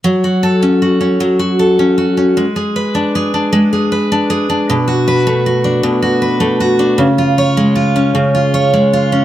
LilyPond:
\new Staff \with { instrumentName = "Steel-string acoustic guitar" } { \time 6/8 \key fis \minor \tempo 4. = 52 fis16 fis'16 a'16 cis'16 fis'16 cis'16 fis16 fis'16 a'16 cis'16 fis'16 cis'16 | gis16 gis'16 b'16 d'16 gis'16 d'16 gis16 gis'16 b'16 d'16 gis'16 d'16 | b,16 fis'16 b'16 a16 fis'16 d'16 b,16 fis'16 b'16 a16 fis'16 d'16 | cis16 eis'16 cis''16 gis16 eis'16 cis'16 cis16 eis'16 cis''16 gis16 eis'16 cis'16 | }